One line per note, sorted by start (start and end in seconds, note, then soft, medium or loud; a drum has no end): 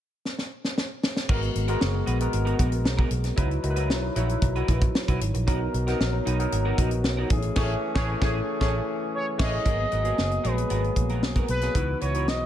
0.25 snare medium
0.39 snare medium
0.64 snare medium
0.78 snare medium
1.03 snare loud
1.17 snare medium
1.29 1.48 G#1 loud
1.29 1.65 G#3 medium
1.29 1.48 B3 medium
1.29 1.65 B3 medium
1.29 1.41 F#4 medium
1.29 1.65 F#4 medium
1.29 1.66 A#4 medium
1.29 1.41 A#4 medium
1.29 kick loud
1.29 crash medium
1.42 muted clean electric guitar stroke soft
1.42 closed hi-hat soft
1.55 1.74 G#1 medium
1.55 muted clean electric guitar stroke soft
1.55 closed hi-hat medium
1.68 2.16 G#3 medium
1.68 2.16 B3 medium
1.68 1.80 B3 medium
1.68 1.80 F#4 medium
1.68 2.17 F#4 medium
1.68 1.80 A#4 medium
1.68 2.17 A#4 medium
1.68 closed hi-hat soft
1.81 2.00 F#1 medium
1.81 snare loud
1.94 muted clean electric guitar stroke soft
2.06 2.26 A#1 medium
2.06 2.26 B3 medium
2.06 2.19 F#4 medium
2.06 2.19 B4 medium
2.06 closed hi-hat medium
2.20 3.16 G#3 medium
2.20 3.16 B3 medium
2.20 3.17 F#4 medium
2.20 3.17 A#4 medium
2.20 muted clean electric guitar stroke soft
2.20 closed hi-hat medium
2.32 2.52 G#1 medium
2.32 muted clean electric guitar stroke soft
2.32 closed hi-hat medium
2.45 2.57 B3 medium
2.45 2.58 F#4 medium
2.45 2.58 A#4 medium
2.45 closed hi-hat soft
2.58 2.85 A#1 medium
2.58 2.74 B3 medium
2.58 2.71 F#4 medium
2.58 2.71 A#4 medium
2.58 kick medium
2.58 closed hi-hat medium
2.72 muted clean electric guitar stroke soft
2.72 closed hi-hat soft
2.85 3.04 B1 medium
2.85 muted clean electric guitar stroke soft
2.85 snare loud
2.97 3.09 B3 medium
2.97 3.10 F#4 medium
2.97 3.10 A#4 medium
2.97 kick medium
3.10 3.30 B1 medium
3.10 muted clean electric guitar stroke soft
3.10 closed hi-hat medium
3.24 muted clean electric guitar stroke soft
3.24 snare soft
3.24 closed hi-hat medium
3.36 3.57 C#2 loud
3.36 3.62 F#3 medium
3.36 3.62 D#4 medium
3.36 3.56 E4 medium
3.36 3.62 E4 medium
3.36 3.50 F#4 medium
3.36 3.48 B4 medium
3.36 3.62 B4 medium
3.36 kick medium
3.36 closed hi-hat medium
3.50 muted clean electric guitar stroke soft
3.50 closed hi-hat soft
3.63 3.90 C#2 medium
3.63 4.12 F#3 medium
3.63 4.12 D#4 medium
3.63 4.12 E4 medium
3.63 3.71 A#4 medium
3.63 muted clean electric guitar stroke soft
3.63 closed hi-hat medium
3.70 4.15 B4 medium
3.76 3.88 E4 medium
3.76 3.89 F#4 medium
3.76 3.89 B4 medium
3.76 closed hi-hat soft
3.89 4.09 B1 medium
3.89 muted clean electric guitar stroke soft
3.89 snare medium
4.02 muted clean electric guitar stroke soft
4.15 4.35 A#1 medium
4.15 5.11 F#3 medium
4.15 5.12 D#4 medium
4.15 4.35 E4 medium
4.15 5.12 E4 medium
4.15 4.29 F#4 medium
4.15 5.12 B4 medium
4.15 4.29 C#5 medium
4.15 closed hi-hat medium
4.29 muted clean electric guitar stroke soft
4.29 closed hi-hat soft
4.42 4.61 B1 medium
4.42 muted clean electric guitar stroke soft
4.42 kick medium
4.42 closed hi-hat medium
4.56 4.67 E4 medium
4.56 4.68 F#4 medium
4.56 4.69 B4 medium
4.56 closed hi-hat soft
4.68 4.87 A#1 medium
4.68 4.84 E4 medium
4.68 4.82 F#4 medium
4.68 4.81 B4 medium
4.68 kick medium
4.68 closed hi-hat medium
4.81 muted clean electric guitar stroke soft
4.81 kick loud
4.81 closed hi-hat soft
4.95 muted clean electric guitar stroke soft
4.95 snare loud
5.08 5.18 B1 medium
5.08 5.20 E4 medium
5.08 5.20 F#4 medium
5.08 5.21 B4 medium
5.08 kick medium
5.08 closed hi-hat soft
5.21 5.31 G#1 medium
5.21 muted clean electric guitar stroke soft
5.21 closed hi-hat medium
5.34 5.48 A#1 medium
5.34 muted clean electric guitar stroke medium
5.34 closed hi-hat medium
5.47 5.66 B1 loud
5.47 5.83 F#3 medium
5.47 5.83 B3 medium
5.47 5.66 D#4 medium
5.47 5.83 D#4 medium
5.47 5.61 F#4 medium
5.47 5.83 A#4 medium
5.47 5.60 A#4 medium
5.47 kick loud
5.47 closed hi-hat medium
5.61 muted clean electric guitar stroke soft
5.74 5.92 B1 medium
5.74 muted clean electric guitar stroke soft
5.74 closed hi-hat medium
5.87 6.34 F#3 medium
5.87 6.35 B3 medium
5.87 6.35 D#4 medium
5.87 5.99 D#4 medium
5.87 6.00 F#4 medium
5.87 6.00 A#4 medium
5.87 6.35 A#4 loud
5.87 snare soft
5.87 closed hi-hat soft
6.00 6.19 A#1 medium
6.00 snare loud
6.13 muted clean electric guitar stroke soft
6.26 6.45 B1 medium
6.26 6.45 D#4 medium
6.26 6.39 F#4 medium
6.26 6.39 B4 medium
6.26 closed hi-hat medium
6.39 7.30 F#3 medium
6.39 7.30 B3 medium
6.39 7.31 D#4 medium
6.39 7.31 A#4 medium
6.39 muted clean electric guitar stroke soft
6.39 closed hi-hat soft
6.52 6.71 G#1 medium
6.52 muted clean electric guitar stroke soft
6.52 closed hi-hat medium
6.65 6.77 D#4 medium
6.65 6.78 F#4 medium
6.65 6.78 A#4 medium
6.78 7.04 A#1 medium
6.78 6.93 D#4 medium
6.78 6.91 F#4 medium
6.78 6.90 A#4 medium
6.78 kick medium
6.78 closed hi-hat medium
6.91 muted clean electric guitar stroke soft
6.91 closed hi-hat medium
7.04 7.23 B1 medium
7.04 muted clean electric guitar stroke soft
7.04 snare loud
7.17 7.37 D#4 medium
7.17 7.30 F#4 medium
7.17 7.31 A#4 medium
7.30 7.49 A1 medium
7.30 7.55 E3 medium
7.30 7.55 A3 medium
7.30 7.37 B3 medium
7.30 7.56 G#4 loud
7.30 muted clean electric guitar stroke soft
7.30 kick loud
7.30 closed hi-hat medium
7.38 7.60 C#4 medium
7.42 muted clean electric guitar stroke soft
7.42 closed hi-hat medium
7.56 7.74 A1 loud
7.56 7.74 E3 loud
7.56 7.74 A3 loud
7.56 7.70 A3 medium
7.56 7.74 E4 medium
7.56 7.74 G#4 loud
7.56 7.70 G#4 medium
7.56 7.74 G#4 medium
7.56 7.70 C#5 medium
7.56 7.75 C#5 loud
7.56 kick loud
7.56 snare loud
7.56 crash medium
7.63 7.78 C#4 medium
7.94 8.13 A1 loud
7.94 8.13 E3 loud
7.94 8.13 A3 loud
7.94 8.09 A3 loud
7.94 8.13 C#4 medium
7.94 8.14 E4 medium
7.94 8.13 G#4 loud
7.94 8.09 G#4 loud
7.94 8.14 G#4 medium
7.94 8.13 C#5 medium
7.94 8.09 C#5 medium
7.94 kick loud
7.94 snare loud
8.21 8.40 A1 loud
8.21 8.39 E3 medium
8.21 8.39 A3 medium
8.21 8.35 A3 medium
8.21 8.39 C#4 medium
8.21 8.39 E4 medium
8.21 8.35 G#4 medium
8.21 8.39 G#4 medium
8.21 8.40 G#4 loud
8.21 8.35 C#5 medium
8.21 kick loud
8.21 snare loud
8.60 8.79 A1 loud
8.60 8.78 E3 medium
8.60 8.74 A3 loud
8.60 8.79 A3 medium
8.60 8.79 C#4 medium
8.60 8.79 E4 medium
8.60 8.74 G#4 medium
8.60 8.79 G#4 medium
8.60 8.79 C#5 medium
8.60 8.74 C#5 loud
8.60 kick medium
8.60 snare medium
9.15 9.26 C#5 loud
9.38 9.57 A1 medium
9.38 9.56 E3 loud
9.38 9.56 A3 medium
9.38 9.52 A3 medium
9.38 9.57 C#4 medium
9.38 9.58 E4 medium
9.38 9.57 G#4 medium
9.38 9.53 G#4 medium
9.38 9.57 G#4 medium
9.38 9.57 C#5 medium
9.38 9.53 C#5 medium
9.38 10.47 D#5 loud
9.38 kick loud
9.38 snare loud
9.38 crash medium
9.65 9.84 G#1 loud
9.65 10.01 F#3 medium
9.65 10.01 A#3 medium
9.65 9.84 B3 medium
9.65 10.01 B3 medium
9.65 9.78 F#4 medium
9.65 10.02 G#4 medium
9.65 9.77 A#4 medium
9.65 kick loud
9.65 closed hi-hat medium
9.79 muted clean electric guitar stroke soft
9.91 10.11 G#1 medium
9.91 10.05 B3 medium
9.91 10.04 F#4 medium
9.91 10.04 A#4 medium
9.91 closed hi-hat soft
10.04 10.40 F#3 medium
10.04 10.40 A#3 medium
10.04 10.41 B3 medium
10.04 10.16 B3 soft
10.04 10.17 F#4 medium
10.04 10.41 G#4 medium
10.04 10.17 A#4 medium
10.04 closed hi-hat soft
10.18 10.37 F#1 medium
10.18 muted clean electric guitar stroke soft
10.18 snare medium
10.31 muted clean electric guitar stroke soft
10.31 closed hi-hat soft
10.43 10.63 A#1 medium
10.43 10.91 F#3 medium
10.43 10.91 G#3 medium
10.43 10.63 B3 medium
10.43 10.92 B3 medium
10.43 10.57 F#4 medium
10.43 10.92 G#4 medium
10.43 10.56 A#4 medium
10.43 11.23 B4 medium
10.43 closed hi-hat medium
10.57 muted clean electric guitar stroke soft
10.57 closed hi-hat soft
10.70 10.89 G#1 medium
10.70 10.89 B3 medium
10.70 10.83 F#4 medium
10.70 10.82 A#4 medium
10.70 closed hi-hat medium
10.83 muted clean electric guitar stroke soft
10.83 closed hi-hat soft
10.96 11.22 A#1 medium
10.96 11.56 F#3 medium
10.96 11.56 A#3 medium
10.96 11.56 B3 medium
10.96 11.56 G#4 medium
10.96 muted clean electric guitar stroke soft
10.96 kick medium
10.96 closed hi-hat medium
11.09 11.21 B3 medium
11.09 11.22 F#4 medium
11.09 11.22 A#4 medium
11.09 closed hi-hat soft
11.22 11.41 B1 medium
11.22 muted clean electric guitar stroke soft
11.22 snare medium
11.36 11.48 B3 medium
11.36 11.48 F#4 medium
11.36 11.49 A#4 medium
11.36 kick medium
11.36 closed hi-hat soft
11.48 11.67 B1 medium
11.48 11.98 B4 loud
11.48 muted clean electric guitar stroke soft
11.48 closed hi-hat medium
11.61 11.74 F#3 medium
11.61 11.74 A#3 medium
11.61 11.74 B3 medium
11.61 11.74 G#4 medium
11.61 muted clean electric guitar stroke soft
11.61 snare soft
11.61 closed hi-hat soft
11.75 11.94 C#2 medium
11.75 12.11 E3 medium
11.75 12.11 B3 medium
11.75 12.11 D#4 medium
11.75 11.94 E4 medium
11.75 11.88 F#4 medium
11.75 12.11 F#4 medium
11.75 11.87 B4 medium
11.75 kick medium
11.75 closed hi-hat medium
11.89 muted clean electric guitar stroke soft
12.01 12.28 C#2 medium
12.01 12.14 E4 medium
12.01 12.14 F#4 medium
12.01 12.13 B4 medium
12.01 12.29 C#5 medium
12.01 closed hi-hat medium
12.14 12.46 E3 medium
12.14 12.46 B3 medium
12.14 12.46 D#4 medium
12.14 12.26 E4 soft
12.14 12.46 F#4 medium
12.14 12.26 F#4 soft
12.14 12.27 B4 medium
12.14 closed hi-hat soft
12.28 12.46 B1 medium
12.28 12.46 D#5 loud
12.28 snare medium
12.40 muted clean electric guitar stroke soft